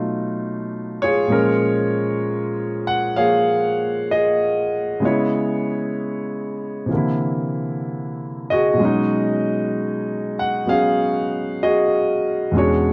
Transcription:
Already playing: B2 F#3 A3 D#4 F4
1.02 F4 G#4 C#5
1.27 A#2 F3 G#3
1.31 C#4 A#4
2.87 F#5
3.15 F3 A#3 G#4 C#5 F5
4.11 G#4 D#5
5.00 C#3 G#3 B3
5.05 E4 G#4 C#5 D#5
6.86 C3 E3
6.91 D3 A#3
6.96 E4
8.50 F#4 G#4 D#5
8.74 B2 F#3
8.79 G#3 C#4
8.85 D#4
10.39 F#5
10.66 F#3 B3 C#4 G#4 F5
11.63 F#4 G#4 D#5
12.52 E2 B2 G#3 C#4
12.56 D4 F#4 G#4 C#5

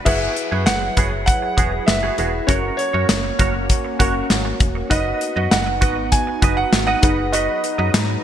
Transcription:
0.05 F#1 F#3 B3 E4 F#4 G#4 B4 E5 F#5, kick, crash
0.36 muted clean electric guitar stroke, closed hi-hat
0.51 F#2 B3 F#4 G#4
0.66 F#1 F#5, snare, closed hi-hat
0.82 muted clean electric guitar stroke
0.97 F#1 B3 F#4 G#4, kick, closed hi-hat
1.12 muted clean electric guitar stroke
1.26 F#5, kick, closed hi-hat
1.42 muted clean electric guitar stroke
1.57 E1 B3 F#4 G#4, kick, closed hi-hat
1.72 muted clean electric guitar stroke
1.86 F#1 E5, muted clean electric guitar stroke, snare, closed hi-hat
2.03 B3 F#4 G#4
2.18 E1 B3 E4 F#4 G#4 B4 F#5, closed hi-hat
2.33 muted clean electric guitar stroke
2.47 F#1 A#3 C#4 F#4 A#4 C#5 F#5, kick, closed hi-hat
2.77 C#5, muted clean electric guitar stroke, closed hi-hat
2.93 F#2 F#4 A#4 C#5
3.09 F#1, snare, closed hi-hat
3.24 muted clean electric guitar stroke
3.39 F#1 F#4 A#4 C#5, kick, closed hi-hat
3.55 muted clean electric guitar stroke
3.70 kick, closed hi-hat
3.85 muted clean electric guitar stroke
3.99 F#1 C#4 F#4 A#4 C#5 F#5, kick, closed hi-hat
4.15 muted clean electric guitar stroke
4.30 G#1, muted clean electric guitar stroke, snare, closed hi-hat
4.45 muted clean electric guitar stroke
4.60 E1, kick, closed hi-hat
4.75 muted clean electric guitar stroke
4.89 F#1 B3 D#4 F#4 B4 D#5 F#5, kick, closed hi-hat
5.21 muted clean electric guitar stroke, closed hi-hat
5.36 F#2 F#4 B4 D#5
5.51 F#1 F#5, snare, closed hi-hat
5.67 muted clean electric guitar stroke
5.81 G#1 F#4 B4 D#5, kick, closed hi-hat
5.97 muted clean electric guitar stroke
6.12 G#5, kick, closed hi-hat
6.27 muted clean electric guitar stroke
6.42 F#1 F#4 B4 D#5, kick, closed hi-hat
6.57 F#5, muted clean electric guitar stroke
6.72 G#1, muted clean electric guitar stroke, snare, closed hi-hat
6.87 F#4 B4 D#5 F#5
7.02 F#1 F#3 D#4 F#4 G#4 B4 D#5 F#5 A#5, kick, closed hi-hat
7.18 muted clean electric guitar stroke
7.32 F#4 B4 D#5, closed hi-hat
7.63 muted clean electric guitar stroke, closed hi-hat
7.78 F#2 F#4 B4 D#5
7.94 G#2, snare, closed hi-hat
8.09 muted clean electric guitar stroke

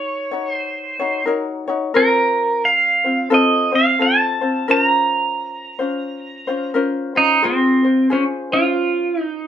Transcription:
Already playing: D#4 F#4 A#4 C#5
0.31 D#4 F#4 C#5
0.51 C5
0.99 D#4 F#4 C#5
1.25 D#4 F#4 A#4 C#5
1.68 D#4 F#4 C#5
1.94 C4 F4 A#4 C5
2.65 F5
3.04 C4 F4 C5
3.30 C4 F4 A4 C5
3.34 D#5
3.72 C4 F4 C5 F5
3.99 C4 F4 A4 C5 A5
4.41 C4 F4 C5
4.68 C#4 F4 A#4 C5 A#5
5.79 C#4 F4 C5
6.47 C#4 F4 C5
6.74 C#4 F4 A#4 C5
7.15 C#4 D#4 F4 C5
7.42 C4 F4 G#4 C5
7.84 F4 C5
8.10 C#4 F4 G#4 C5
8.52 C#4 F4 C5
9.21 D#4

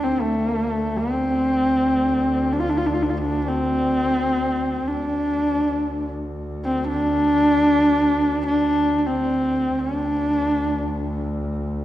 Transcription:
0.03 D2 C4
0.21 A3
0.96 C4
2.52 D4
2.60 F4
2.69 D4
2.77 F4
2.86 D4
2.94 F4
3.03 D4
3.10 F4
3.18 D4
3.48 C4
4.88 D2 D4
6.65 C4
6.87 D4
8.46 D4
8.98 D4
9.06 C4
9.76 D2 D4

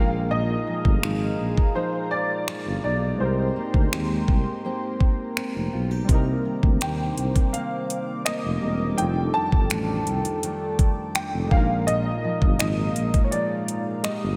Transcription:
Already playing: A#1 A#2 D#3 G#3 A#3 D#4 F4 G#4 F5 A#5
0.00 A#4
0.31 A#2 D#5
0.67 F3
0.85 G1, kick
1.03 G#1 F3 G#3 D#4, finger snap
1.40 A#1
1.58 kick
1.75 F3 G#3 D#4 C5
2.11 D5
2.48 G#3, finger snap
2.66 G1
2.84 B1 D#4 D5
3.16 G#3 C4
3.20 C2 D#4 G4 C5 G5 A#5 C6
3.25 A#4
3.56 A#3
3.74 D2, kick
3.92 D#2 A#3 C4 G4, finger snap
4.28 C2, kick
4.65 A#3 C4 G4
5.01 kick
5.37 C4, finger snap
5.55 F1
5.73 B1 F4
5.91 G4
6.05 G3 C4 C5 D6
6.09 C2 C3 A#3 D#4, kick, closed hi-hat
6.15 A#4
6.45 D#3
6.63 D2, kick
6.81 D#2 D#3 A#3 D4 G5, finger snap, closed hi-hat
7.17 C2, closed hi-hat
7.36 kick, closed hi-hat
7.53 D#3 A#3 F5, closed hi-hat
7.90 closed hi-hat
8.25 A#3 D#5, finger snap, closed hi-hat
8.44 F1
8.61 E1 G3 A#3 C4 D#4
8.65 A#4
8.94 G3 D4 A4 G5
8.98 F1 F2 D#4 F4, closed hi-hat
9.04 G#4
9.10 A4
9.34 D#3 A5
9.52 G1, kick
9.70 A1 D#3 A3 D4, finger snap, closed hi-hat
10.07 C2, closed hi-hat
10.25 closed hi-hat
10.43 D#3 A3 D4, closed hi-hat
10.79 kick, closed hi-hat
11.15 A3 G5, finger snap, closed hi-hat
11.33 F1
11.47 G#3 A#3 F5
11.51 A#1 A#2 G#3 D4 F4 F5 A#5, kick
11.57 D#4 A#4
11.87 A#2 D#5, closed hi-hat
12.24 F3
12.42 G1, kick
12.59 G#1 F3 G#3 D#4 D#5, finger snap, closed hi-hat
12.96 A#1, closed hi-hat
13.14 kick, closed hi-hat
13.24 C#5
13.31 F3 G#3 D#4 D5, closed hi-hat
13.68 closed hi-hat
14.03 G#3 A#3 D#4 F4 D#5, finger snap, closed hi-hat
14.08 G4
14.23 G1

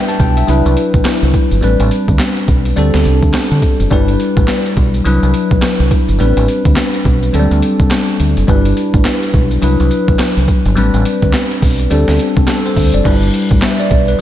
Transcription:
Already playing: G3 D4 E4 B4 E5 G5
0.09 A5, closed hi-hat
0.20 B1 G5, kick, closed hi-hat
0.37 E5, closed hi-hat
0.47 C2 F#3 D4 E4 B4, closed hi-hat
0.66 C2, closed hi-hat
0.77 closed hi-hat
0.94 B1, kick, closed hi-hat
1.05 muted fingered electric bass stroke, snare, clap, closed hi-hat
1.23 C2, closed hi-hat
1.34 kick, closed hi-hat
1.51 G1, closed hi-hat
1.62 A1 G3 C4 D4 B4, closed hi-hat
1.80 A1, closed hi-hat
1.91 closed hi-hat
2.08 D2, kick, closed hi-hat
2.19 snare, clap, closed hi-hat
2.37 closed hi-hat
2.48 B1, kick, closed hi-hat
2.65 closed hi-hat
2.76 D2 G3 C4 D4 A4, closed hi-hat
2.94 D2, snare, closed hi-hat
3.05 C2, closed hi-hat
3.23 D2, kick, closed hi-hat
3.33 snare, clap, closed hi-hat
3.51 D3, closed hi-hat
3.62 kick, closed hi-hat
3.80 F#1, closed hi-hat
3.90 G1 G3 D4 E4 B4, kick, closed hi-hat
4.08 closed hi-hat
4.20 closed hi-hat
4.37 A1, kick, closed hi-hat
4.48 snare, clap, closed hi-hat
4.66 closed hi-hat
4.77 B1, kick, closed hi-hat
4.94 closed hi-hat
5.04 C2 F#3 D4 E4 B4, closed hi-hat
5.23 C2, closed hi-hat
5.34 closed hi-hat
5.51 B1, kick, closed hi-hat
5.62 muted fingered electric bass stroke, snare, clap, closed hi-hat
5.80 C2, closed hi-hat
5.91 kick, closed hi-hat
6.08 G1, closed hi-hat
6.19 A1 G3 B3 D4 B4, closed hi-hat
6.26 C4
6.37 A1, closed hi-hat
6.48 closed hi-hat
6.65 D2, kick, closed hi-hat
6.76 snare, clap, closed hi-hat
6.94 closed hi-hat
7.05 B1, kick, closed hi-hat
7.23 closed hi-hat
7.33 D2 F#3 C4 D4 A4, closed hi-hat
7.39 G3
7.51 D2, closed hi-hat
7.62 closed hi-hat
7.80 C2, kick, closed hi-hat
7.90 snare, clap, closed hi-hat
8.09 closed hi-hat
8.20 D2, closed hi-hat
8.37 F#1, closed hi-hat
8.47 G1 G3 D4 E4 B4, kick, closed hi-hat
8.65 closed hi-hat
8.77 closed hi-hat
8.94 A1, kick, closed hi-hat
9.05 snare, clap, closed hi-hat
9.23 closed hi-hat
9.34 B1, kick, closed hi-hat
9.51 closed hi-hat
9.61 C2 F#3 D4 E4 B4, closed hi-hat
9.80 C2, closed hi-hat
9.91 closed hi-hat
10.08 B1, kick, closed hi-hat
10.19 muted fingered electric bass stroke, snare, clap, closed hi-hat
10.37 C2, closed hi-hat
10.48 kick, closed hi-hat
10.65 G1, closed hi-hat
10.76 A1 G3 C4 D4 B4, closed hi-hat
10.94 A1, closed hi-hat
11.05 closed hi-hat
11.22 D2, kick, closed hi-hat
11.33 snare, clap, closed hi-hat
11.51 closed hi-hat
11.62 B1, kick, open hi-hat
11.79 closed hi-hat
11.90 D2 G3 C4 D4 A4, closed hi-hat
12.08 D2, snare, closed hi-hat
12.19 closed hi-hat
12.37 C2, kick, closed hi-hat
12.47 A4, snare, clap, closed hi-hat
12.66 C5, closed hi-hat
12.77 D2, kick, open hi-hat
12.94 F#1 D5, closed hi-hat
13.04 G1 G3 D4 E4 B4, kick, closed hi-hat, crash
13.22 closed hi-hat
13.34 closed hi-hat
13.51 A1, kick, closed hi-hat
13.62 E5, snare, clap, closed hi-hat
13.80 D5, closed hi-hat
13.91 B1, kick, closed hi-hat
14.08 B4, closed hi-hat

